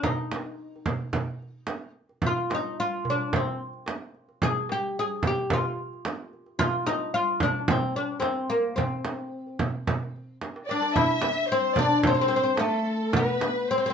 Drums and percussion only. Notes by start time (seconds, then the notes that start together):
0.03 frame drum, darbuka dum
0.21 darbuka ka
0.32 frame drum
0.36 darbuka tek
0.76 darbuka ka
0.86 frame drum, darbuka dum
1.13 frame drum, darbuka dum
1.29 darbuka ka
1.42 darbuka ka
1.67 darbuka tek, frame drum
1.81 darbuka ka
2.09 darbuka ka
2.22 frame drum, darbuka dum
2.50 darbuka tek, frame drum
2.93 darbuka ka
3.05 darbuka dum
3.33 frame drum, darbuka dum
3.60 darbuka ka
3.73 darbuka ka
3.86 darbuka tek, frame drum
4.15 darbuka ka
4.29 darbuka ka
4.42 frame drum, darbuka dum
4.69 darbuka tek
5.11 darbuka ka
5.23 frame drum, darbuka dum
5.50 frame drum, darbuka dum
5.79 darbuka ka
5.93 darbuka ka
6.05 darbuka tek, frame drum
6.18 darbuka ka
6.33 darbuka ka
6.46 darbuka ka
6.59 frame drum, darbuka dum
6.87 darbuka tek, frame drum
7.29 darbuka ka
7.40 frame drum, darbuka dum
7.68 frame drum, darbuka dum
7.98 darbuka ka
8.12 darbuka ka
8.22 darbuka tek, frame drum
8.39 darbuka ka
8.51 darbuka ka
8.65 darbuka ka
8.78 frame drum, darbuka dum
9.05 darbuka tek, frame drum
9.46 darbuka ka
9.59 frame drum, darbuka dum
9.87 frame drum, darbuka dum
10.03 darbuka ka
10.16 darbuka ka
10.41 darbuka tek, frame drum
10.56 darbuka ka
10.69 darbuka tek
10.82 darbuka ka
10.95 darbuka dum, frame drum
11.22 darbuka tek, frame drum
11.51 darbuka ka
11.65 darbuka ka
11.76 frame drum, darbuka dum
12.03 frame drum, darbuka dum
12.57 darbuka tek, frame drum
13.13 darbuka dum, frame drum
13.27 darbuka ka
13.41 darbuka tek, frame drum
13.69 darbuka ka